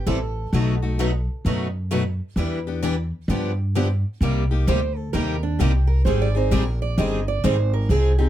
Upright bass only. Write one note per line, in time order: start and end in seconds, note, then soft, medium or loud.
0.06 0.45 A1 medium
0.53 1.26 B1 medium
1.45 2.18 F#2 medium
2.36 3.10 E2 medium
3.28 4.02 G2 medium
4.21 4.65 C2 medium
4.67 5.12 D2 medium
5.14 5.58 D#2 medium
5.59 6.04 C2 medium
6.05 6.50 G#1 medium
6.51 6.96 A#1 medium
6.97 7.42 G1 medium
7.44 7.88 G#1 medium
7.89 8.29 C2 medium